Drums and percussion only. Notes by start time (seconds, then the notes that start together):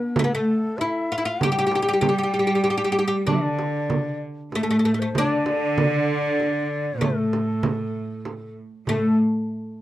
0.16 frame drum
0.78 frame drum
1.41 frame drum
1.72 frame drum
2.02 frame drum
2.65 frame drum
3.27 frame drum
3.59 frame drum
3.90 frame drum
4.52 frame drum
5.15 frame drum
5.46 frame drum
5.78 frame drum
6.40 frame drum
7.02 frame drum
7.33 frame drum
7.63 frame drum
8.25 frame drum
8.87 frame drum